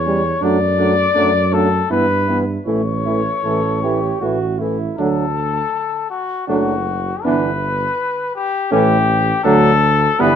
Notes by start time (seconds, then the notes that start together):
Already playing: E2 C#5
0.06 G3 C#4
0.41 F#2 F#3 A3 D4 D5
0.77 F#3 A3 D4
1.14 F#2 F#3 A3 D4
1.51 F#3 A3 D4 A4
1.90 G2 E3 B3 E4 B4
2.28 E3 B3 E4
2.66 A1 E3 A3 E4 C#5
3.05 E3 A3 E4
3.43 A1 E3 A3 A4
3.83 E3 A3 G4
4.21 A1 E3 A3 F#4
4.59 E3 A3 E4
4.98 D2 F#3 A3 D4 A4
6.10 F#4
6.47 F#1 F#3 A3 D4 F#4
7.23 G1 E3 B3 D4 B4
8.35 G4
8.71 A1 E3 A3 C#4 G4
9.44 D2 F#3 A3 D4 A4
10.19 G1 E3 G3 B3 B4